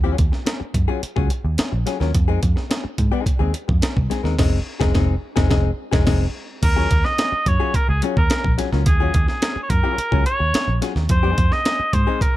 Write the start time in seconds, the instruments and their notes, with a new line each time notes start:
Already playing: picked electric bass D#2
0.04 hollow-body jazz guitar F#3 C#4 F4 G#4
0.17 picked electric bass D#2, muted hollow-body jazz guitar stroke, kick, closed hi-hat
0.32 muted hollow-body jazz guitar stroke, snare
0.46 muted hollow-body jazz guitar stroke, snare, closed hi-hat
0.60 muted hollow-body jazz guitar stroke, muted picked electric bass stroke
0.74 picked electric bass F#2, kick, closed hi-hat
0.88 hollow-body jazz guitar F#3 C#4 F4 G#4
1.02 muted hollow-body jazz guitar stroke, muted picked electric bass stroke, closed hi-hat
1.16 picked electric bass C#2, hollow-body jazz guitar F#3 C#4 F4 G#4, kick
1.30 muted hollow-body jazz guitar stroke, closed hi-hat
1.45 picked electric bass D#2, muted hollow-body jazz guitar stroke
1.58 muted picked electric bass stroke, muted hollow-body jazz guitar stroke, snare, closed hi-hat
1.72 picked electric bass A#1, muted hollow-body jazz guitar stroke
1.86 hollow-body jazz guitar F#3 C#4 F4 G#4, snare, closed hi-hat
2.00 picked electric bass D#2, hollow-body jazz guitar F#3 C#4 F4 A#4, snare
2.14 picked electric bass F2, muted hollow-body jazz guitar stroke, kick, closed hi-hat
2.28 hollow-body jazz guitar G#3 C4 D#4 G#4
2.42 picked electric bass F2, muted hollow-body jazz guitar stroke, kick, closed hi-hat
2.56 muted hollow-body jazz guitar stroke, snare
2.70 muted hollow-body jazz guitar stroke, snare, closed hi-hat
2.84 muted hollow-body jazz guitar stroke, muted picked electric bass stroke
2.98 picked electric bass G#2, kick, closed hi-hat
3.12 hollow-body jazz guitar G#3 C4 D#4 G#4
3.26 muted picked electric bass stroke, kick, closed hi-hat
3.39 picked electric bass D#2, hollow-body jazz guitar G#3 C4 D#4 G#4
3.54 muted hollow-body jazz guitar stroke, closed hi-hat
3.68 picked electric bass F2, muted hollow-body jazz guitar stroke, kick
3.82 muted hollow-body jazz guitar stroke, muted picked electric bass stroke, snare, closed hi-hat
3.96 picked electric bass C2, muted hollow-body jazz guitar stroke, kick
4.10 hollow-body jazz guitar G#3 C4 D#4 G#4, snare, closed hi-hat
4.23 picked electric bass D#2, hollow-body jazz guitar G#3 C4 D#4 A#4, snare
4.38 picked electric bass F1, hollow-body jazz guitar G#3 C4 D#4, kick, snare, crash
4.80 picked electric bass F1, hollow-body jazz guitar G#3 C4 D#4 G#4, kick, snare
4.94 picked electric bass F1, hollow-body jazz guitar G#3 C4 D#4 G#4, kick, snare
5.36 picked electric bass F1, hollow-body jazz guitar G#3 C4 D#4 G#4, kick, snare
5.50 picked electric bass F1, hollow-body jazz guitar G#3 C4 D#4 G#4, kick, snare
5.91 picked electric bass F1, hollow-body jazz guitar G#3 C4 D#4 G#4, kick, snare
6.06 picked electric bass F1, hollow-body jazz guitar G#3 C4 D#4 G#4, kick, snare, crash
6.62 picked electric bass D#2, oboe A#4, muted hollow-body jazz guitar stroke, kick, closed hi-hat, crash
6.76 hollow-body jazz guitar F#3 C#4 F4 G#4
6.90 picked electric bass D#2, muted hollow-body jazz guitar stroke, kick, closed hi-hat
7.04 oboe D#5, muted hollow-body jazz guitar stroke, snare
7.18 muted hollow-body jazz guitar stroke, snare, closed hi-hat
7.32 muted hollow-body jazz guitar stroke, muted picked electric bass stroke
7.46 picked electric bass F#2, oboe C#5, kick, closed hi-hat
7.60 hollow-body jazz guitar F#3 C#4 F4 G#4
7.74 oboe A#4, muted picked electric bass stroke, kick, closed hi-hat
7.88 picked electric bass C#2, oboe G#4, muted hollow-body jazz guitar stroke
8.02 hollow-body jazz guitar F#3 C#4 F4 G#4, closed hi-hat
8.17 picked electric bass D#2, oboe A#4, muted hollow-body jazz guitar stroke, kick
8.30 muted hollow-body jazz guitar stroke, muted picked electric bass stroke, snare, closed hi-hat
8.44 picked electric bass A#1, muted hollow-body jazz guitar stroke, kick
8.58 hollow-body jazz guitar F#3 C#4 F4 G#4, snare, closed hi-hat
8.72 picked electric bass C#2, hollow-body jazz guitar F#3 C#4 F4 A#4, snare
8.86 picked electric bass D#2, oboe G#4, muted hollow-body jazz guitar stroke, kick, closed hi-hat
9.00 hollow-body jazz guitar F#3 C#4 F4 G#4
9.14 picked electric bass D#2, kick, closed hi-hat
9.28 oboe G#4, muted hollow-body jazz guitar stroke, snare
9.42 muted hollow-body jazz guitar stroke, snare, closed hi-hat
9.56 muted hollow-body jazz guitar stroke, muted picked electric bass stroke
9.63 oboe C#5
9.70 picked electric bass F#2, oboe A#4, kick, closed hi-hat
9.83 hollow-body jazz guitar F#3 C#4 F4 G#4
9.98 muted hollow-body jazz guitar stroke, muted picked electric bass stroke, closed hi-hat
10.12 picked electric bass C#2, hollow-body jazz guitar F#3 C#4 F4 G#4, kick
10.25 oboe C#5, muted hollow-body jazz guitar stroke, closed hi-hat
10.39 picked electric bass D#2, muted hollow-body jazz guitar stroke
10.54 muted hollow-body jazz guitar stroke, muted picked electric bass stroke, snare, closed hi-hat
10.68 picked electric bass A#1
10.82 hollow-body jazz guitar F#3 C#4 F4 G#4, snare, closed hi-hat
10.96 picked electric bass D#2, muted hollow-body jazz guitar stroke, snare
11.09 picked electric bass F2, oboe C5, muted hollow-body jazz guitar stroke, kick, closed hi-hat
11.23 hollow-body jazz guitar G#3 C4 D#4 G#4
11.38 picked electric bass F2, muted hollow-body jazz guitar stroke, kick, closed hi-hat
11.51 oboe D#5, muted hollow-body jazz guitar stroke, snare
11.65 muted hollow-body jazz guitar stroke, snare, closed hi-hat
11.80 muted hollow-body jazz guitar stroke, muted picked electric bass stroke
11.93 picked electric bass G#2, oboe C5, kick, closed hi-hat
12.07 hollow-body jazz guitar G#3 C4 D#4 G#4
12.21 oboe A#4, muted picked electric bass stroke, muted hollow-body jazz guitar stroke, kick, closed hi-hat